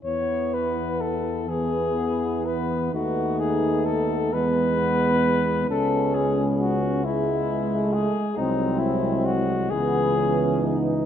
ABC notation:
X:1
M:6/8
L:1/16
Q:3/8=44
K:E
V:1 name="Flugelhorn"
c2 B2 A2 G4 B2 | F2 G2 A2 B6 | A2 G2 F2 E4 G2 | D2 E2 F2 G4 z2 |]
V:2 name="Trombone section"
z6 B,6 | D6 B,6 | C6 G,6 | ^B,6 =B,2 C2 D2 |]
V:3 name="French horn section"
B,6 B,6 | B,6 B,6 | B,6 B,3 A,3 | G,6 B,6 |]
V:4 name="Trombone" clef=bass
E,6 E,6 | A,6 G,6 | G,4 z2 G,6 | F,6 E,6 |]
V:5 name="Tuba" clef=bass
E,,12 | D,,6 E,,6 | C,,8- C,,2 z2 | ^B,,,6 C,,6 |]